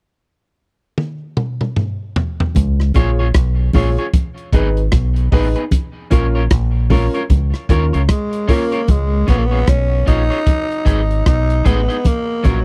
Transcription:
0.98 high tom
1.37 mid tom
1.61 mid tom
1.76 mid tom
2.16 floor tom
2.40 floor tom
2.55 fingered electric bass C#2, kick, closed hi-hat, low conga
2.80 cross-stick
2.94 fingered electric bass A#1, clean electric guitar C#4 F4 G#4 C#5, upright piano F4 G#4 C#5, kick, closed hi-hat, low conga
3.19 clean electric guitar C#4 F4 G#4 C#5
3.34 fingered electric bass B1, kick, cross-stick, closed hi-hat
3.73 fingered electric bass A#1, clean electric guitar C#4 F4 G#4 C#5, upright piano F4 G#4 C#5, kick, open hi-hat, high conga, low conga
3.98 clean electric guitar C#4 F4 G#4 C#5, closed hi-hat
4.13 kick, closed hi-hat, low conga
4.38 closed hi-hat
4.53 fingered electric bass G#1, clean electric guitar B3 D#4 G#4 B4, upright piano D#4 G#4 B4, kick, closed hi-hat
4.77 closed hi-hat
4.92 fingered electric bass B1, kick, cross-stick, closed hi-hat
5.16 closed hi-hat
5.31 fingered electric bass A1, clean electric guitar B3 D#4 G#4 B4, upright piano D#4 G#4 B4, kick, open hi-hat
5.56 clean electric guitar B3 D#4 G#4 B4, closed hi-hat
5.71 kick, closed hi-hat, low conga
6.10 fingered electric bass A#1, upright piano C#4 F4 A#4, clean electric guitar C#4 F4 A#4 C#5, kick, closed hi-hat, low conga
6.35 clean electric guitar C#4 F4 A#4 C#5
6.50 fingered electric bass A#1, kick, cross-stick, closed hi-hat
6.90 upright piano C#4 F4 A#4, clean electric guitar C#4 F4 A#4 C#5, kick, open hi-hat, high conga, low conga
7.14 clean electric guitar C#4 F4 A#4 C#5, closed hi-hat
7.30 fingered electric bass C#2, kick, closed hi-hat, low conga
7.54 cross-stick, closed hi-hat
7.69 fingered electric bass D#2, upright piano C#4 F4 A#4, clean electric guitar C#4 F4 A#4 C#5, kick, closed hi-hat
7.93 fingered electric bass C#2, clean electric guitar C#4 F4 A#4 C#5, closed hi-hat
8.09 tenor saxophone G#3, kick, cross-stick, closed hi-hat
8.33 closed hi-hat
8.48 tenor saxophone A#3, clean electric guitar C#4 F4 A#4 C#5, upright piano C#4 F4 A#4, kick, open hi-hat
8.72 clean electric guitar C#4 F4 A#4 C#5, closed hi-hat
8.88 fingered electric bass C#2, tenor saxophone G#3, kick, closed hi-hat, low conga
9.27 fingered electric bass A#1, tenor saxophone B3, clean electric guitar C#4 F4 G#4 C#5, kick, closed hi-hat, low conga
9.38 tenor saxophone A#3
9.46 tenor saxophone B3
9.51 clean electric guitar C#4 F4 G#4 C#5
9.67 fingered electric bass B1, tenor saxophone C#4, kick, cross-stick, closed hi-hat, high conga
10.06 fingered electric bass A#1, clean electric guitar C#4 F4 G#4 C#5, tenor saxophone D#4, kick, closed hi-hat
10.30 clean electric guitar C#4 F4 G#4 C#5, closed hi-hat
10.47 kick, closed hi-hat, low conga
10.71 closed hi-hat
10.85 fingered electric bass G#1, clean electric guitar D#4 G#4 B4 D#5, kick, closed hi-hat
11.11 closed hi-hat
11.26 fingered electric bass B1, tenor saxophone D#4, kick, cross-stick, closed hi-hat
11.50 closed hi-hat
11.64 fingered electric bass A1, tenor saxophone B3, clean electric guitar D#4 G#4 B4 D#5, kick, closed hi-hat, high conga
11.88 clean electric guitar D#4 G#4 B4 D#5, closed hi-hat
12.05 tenor saxophone A#3, kick, closed hi-hat, low conga
12.43 fingered electric bass A#1, tenor saxophone F#3, clean electric guitar C#4 F4 A#4 C#5, kick, closed hi-hat, low conga

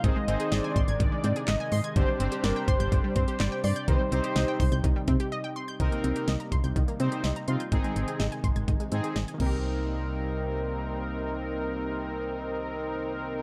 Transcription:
Already playing: analog synth pad C3 D#4
0.04 fm bass G#1, synth arpeggio sound D#3, analog synth pad D#3 G#3, analog polysynth C4 D#4 G#4 C5, analog synth lead D#5, kick, closed hi-hat
0.16 synth arpeggio sound G#3
0.28 fm bass G#1, analog polysynth C4 D#4 G#4 C5, synth arpeggio sound C4, closed hi-hat
0.40 synth arpeggio sound G#4, closed hi-hat
0.52 fm bass G#1, analog synth lead D5, synth arpeggio sound D#5, snare, closed hi-hat
0.64 synth arpeggio sound G#5
0.76 fm bass G#1, synth arpeggio sound C6, kick, closed hi-hat
0.88 fm bass G#1, synth arpeggio sound G#6, closed hi-hat
1.00 fm bass G#1, synth arpeggio sound D#3, analog synth lead D5, kick, closed hi-hat
1.12 synth arpeggio sound G#3
1.24 fm bass G#2, synth arpeggio sound C4, closed hi-hat
1.36 synth arpeggio sound G#4, closed hi-hat
1.48 fm bass G#1, analog synth lead D#5, synth arpeggio sound D#5, snare, clap, closed hi-hat
1.60 synth arpeggio sound G#5
1.72 fm bass G#2, synth arpeggio sound C6, open hi-hat
1.84 synth arpeggio sound G#6, closed hi-hat
1.96 fm bass G1, synth arpeggio sound D3, analog synth pad G3 D4 G4, analog polysynth C4 D4 G4 C5, analog synth lead C5, kick, closed hi-hat
2.08 synth arpeggio sound G3
2.20 fm bass G1, analog polysynth C4 D4 G4 C5, synth arpeggio sound C4, closed hi-hat
2.32 synth arpeggio sound G4, closed hi-hat
2.44 fm bass G1, analog synth lead A#4, synth arpeggio sound D5, snare, closed hi-hat
2.56 synth arpeggio sound G5
2.68 fm bass G1, analog synth lead C5, synth arpeggio sound C6, kick, closed hi-hat
2.80 fm bass G1, synth arpeggio sound G6, closed hi-hat
2.92 fm bass G1, synth arpeggio sound D3, kick, closed hi-hat
3.04 synth arpeggio sound G3
3.16 fm bass G2, synth arpeggio sound C4, analog synth lead C5, kick, closed hi-hat
3.28 synth arpeggio sound G4, closed hi-hat
3.40 fm bass G1, synth arpeggio sound D5, snare, clap, closed hi-hat
3.52 synth arpeggio sound G5
3.64 fm bass G2, analog synth lead D5, synth arpeggio sound C6, open hi-hat
3.76 synth arpeggio sound G6, closed hi-hat
3.88 fm bass C2, analog synth pad C3 G3 D#4, synth arpeggio sound D#3, analog polysynth C4 D#4 G4 C5, analog synth lead C5, kick, closed hi-hat
4.00 synth arpeggio sound G3
4.12 fm bass C2, synth arpeggio sound C4, analog polysynth C4 D#4 G4 C5, closed hi-hat
4.24 synth arpeggio sound G4, closed hi-hat
4.36 fm bass C2, synth arpeggio sound D#5, snare, closed hi-hat
4.48 synth arpeggio sound G5
4.60 fm bass C2, synth arpeggio sound C6, kick, open hi-hat
4.72 fm bass C2, synth arpeggio sound G6, closed hi-hat
4.84 fm bass C2, synth arpeggio sound D#3, kick, closed hi-hat
4.96 synth arpeggio sound G3
5.08 fm bass C3, synth arpeggio sound C4, kick, closed hi-hat
5.20 synth arpeggio sound G4, closed hi-hat
5.32 synth arpeggio sound D#5
5.44 synth arpeggio sound G5
5.56 synth arpeggio sound C6
5.68 synth arpeggio sound G6
5.80 fm bass C2, analog synth pad C3 G3 A#3 D#4, synth arpeggio sound D#3, analog polysynth C4 D#4 A#4, kick, closed hi-hat
5.92 synth arpeggio sound A#3, closed hi-hat
6.04 fm bass C2, synth arpeggio sound C4, closed hi-hat
6.16 synth arpeggio sound G4, closed hi-hat
6.28 fm bass C2, synth arpeggio sound D#5, snare, closed hi-hat
6.40 synth arpeggio sound A#5, closed hi-hat
6.52 fm bass C2, synth arpeggio sound C6, kick, closed hi-hat
6.64 fm bass C2, synth arpeggio sound G6, closed hi-hat
6.76 fm bass C2, synth arpeggio sound D#3, kick, closed hi-hat
6.88 synth arpeggio sound A#3, closed hi-hat
7.00 fm bass C3, synth arpeggio sound C4, analog polysynth C4 D#4 C5, closed hi-hat
7.12 synth arpeggio sound G4, closed hi-hat
7.24 fm bass C2, synth arpeggio sound D#5, snare, closed hi-hat
7.36 synth arpeggio sound A#5, closed hi-hat
7.48 fm bass C3, analog polysynth C4 D#4 F4, synth arpeggio sound C6, closed hi-hat
7.60 synth arpeggio sound G6, closed hi-hat
7.72 fm bass G#1, analog synth pad C3 D#3 G#3 D#4, synth arpeggio sound D#3, analog polysynth C4 D#4 G#4, kick, closed hi-hat
7.84 synth arpeggio sound G#3, closed hi-hat
7.96 fm bass G#1, synth arpeggio sound C4, closed hi-hat
8.08 synth arpeggio sound G#4, closed hi-hat
8.20 fm bass G#1, synth arpeggio sound D#5, snare, closed hi-hat
8.32 synth arpeggio sound G#5, closed hi-hat
8.44 fm bass G#1, synth arpeggio sound C6, kick, closed hi-hat
8.56 fm bass G#1, synth arpeggio sound G#6, closed hi-hat
8.68 fm bass G#1, synth arpeggio sound D#3, kick, closed hi-hat
8.80 synth arpeggio sound G#3, closed hi-hat
8.92 fm bass G#2, synth arpeggio sound C4, analog polysynth C4 D#4 G#4, closed hi-hat
9.04 synth arpeggio sound G#4, closed hi-hat
9.16 fm bass G#1, synth arpeggio sound D#5, snare, closed hi-hat
9.28 synth arpeggio sound G#5, closed hi-hat
9.34 synth arpeggio sound D#3
9.38 fm bass C2, analog synth pad C3 G3 A#3 D#4, synth arpeggio sound A#3, analog polysynth C4 D#4 A#4, kick, crash
9.42 synth arpeggio sound C4
9.46 synth arpeggio sound G4

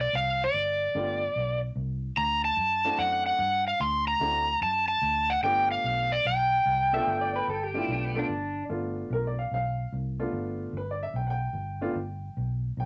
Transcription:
0.01 electric slide guitar D5
0.13 fingered electric bass C2, electric slide guitar F5
0.44 electric slide guitar D5
0.54 fingered electric bass G1
0.95 fingered electric bass G1, upright piano A3 B3 D4 F4 G4
1.36 fingered electric bass B1
1.76 fingered electric bass C2
2.17 fingered electric bass D2, electric slide guitar A#5
2.45 electric slide guitar A5
2.57 fingered electric bass F#2
2.85 upright piano A3 C4 D4 E4 F#4
2.98 fingered electric bass F#2, electric slide guitar F#5
3.26 electric slide guitar F#5
3.39 fingered electric bass G2
3.68 electric slide guitar F5
3.80 fingered electric bass D2, electric slide guitar C6
4.08 electric slide guitar A#5
4.20 fingered electric bass D2, upright piano A3 C4 D4 E4 F#4
4.61 fingered electric bass F#2, electric slide guitar A5
4.88 electric slide guitar A5
5.02 fingered electric bass D2
5.30 electric slide guitar F#5
5.42 fingered electric bass G1, upright piano A3 B3 D4 F4 G4, electric slide guitar G5
5.72 electric slide guitar F5
5.84 fingered electric bass B1
6.12 electric slide guitar D5
6.25 fingered electric bass B1, electric slide guitar G5
6.66 fingered electric bass C2
6.93 upright piano A3 B3 D4 F4 A4, clean electric guitar E5
7.07 fingered electric bass G1
7.21 clean electric guitar D5
7.36 clean electric guitar B4
7.48 fingered electric bass G1, clean electric guitar A4
7.63 clean electric guitar G4
7.74 upright piano A3 B3 D4 F4 G4, clean electric guitar E4
7.88 fingered electric bass B1, clean electric guitar D4
8.05 clean electric guitar B3
8.14 upright piano A3 B3 D4 F4 A4
8.19 clean electric guitar D4
8.29 fingered electric bass G1
8.69 fingered electric bass G1, upright piano A3 B3 D4 F4
9.10 fingered electric bass B1, upright piano A#4
9.27 upright piano D5
9.39 upright piano F5
9.51 fingered electric bass B1, upright piano F5
9.93 fingered electric bass C2
10.19 upright piano A3 B3 D4 F4
10.33 fingered electric bass G1
10.73 fingered electric bass G1
10.77 upright piano B4
10.91 upright piano D5
11.03 upright piano E5
11.14 fingered electric bass B1, upright piano G5
11.27 upright piano F#5 G5
11.53 fingered electric bass G1
11.81 upright piano A3 B3 D4 F4
11.95 fingered electric bass G1
12.37 fingered electric bass B1
12.77 fingered electric bass B1, upright piano G5

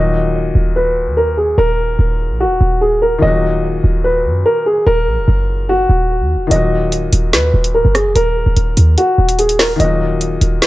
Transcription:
Already playing: 808-style bass D#1, felt piano A#2 D#3 F#3, grand piano D#5
0.00 felt piano F#4
0.55 808-style bass D#1
0.76 grand piano B4
1.07 808-style bass D#2
1.17 grand piano A#4
1.37 grand piano G#4
1.58 808-style bass D#1, grand piano A#4
1.99 808-style bass D#1
2.30 808-style bass A#1
2.40 grand piano F#4
2.45 808-style bass D#1
2.61 808-style bass D#1
2.81 grand piano G#4
3.02 grand piano A#4
3.18 808-style bass D#1, felt piano D#3 F#3, grand piano D#5
3.24 felt piano A#2 F#4
3.84 808-style bass D#1
4.04 grand piano B4
4.25 808-style bass F#2
4.46 grand piano A#4
4.66 grand piano G#4
4.87 808-style bass D#1, grand piano A#4
5.07 808-style bass A#1
5.18 808-style bass D#1
5.28 808-style bass F#1
5.69 grand piano F#4
5.89 808-style bass D#1
6.20 808-style bass D#2
6.36 808-style bass D#1
6.47 felt piano D#3 F#3
6.51 808-style bass D#1, felt piano A#2, grand piano D#5, closed hi-hat
6.56 felt piano F#4
6.92 closed hi-hat
7.13 808-style bass D#1, closed hi-hat
7.33 808-style bass D#2, grand piano B4, snare, closed hi-hat
7.54 808-style bass D#1
7.64 closed hi-hat
7.74 808-style bass C#1, grand piano A#4
7.85 808-style bass F#1
7.95 grand piano G#4, cross-stick, closed hi-hat
8.05 808-style bass F1
8.15 808-style bass D#1, grand piano A#4, closed hi-hat
8.46 808-style bass D#1
8.57 808-style bass D#1, closed hi-hat
8.77 808-style bass D#2, closed hi-hat
8.98 grand piano F#4, closed hi-hat
9.18 808-style bass D#1
9.29 closed hi-hat
9.39 grand piano G#4, closed hi-hat
9.49 closed hi-hat
9.59 grand piano A#4, cross-stick, snare, open hi-hat
9.76 808-style bass D#1, felt piano D#3 F#3, grand piano D#5, closed hi-hat
9.82 felt piano A#2 F#4
10.21 closed hi-hat
10.41 808-style bass D#1, closed hi-hat
10.62 grand piano B4, snare, closed hi-hat

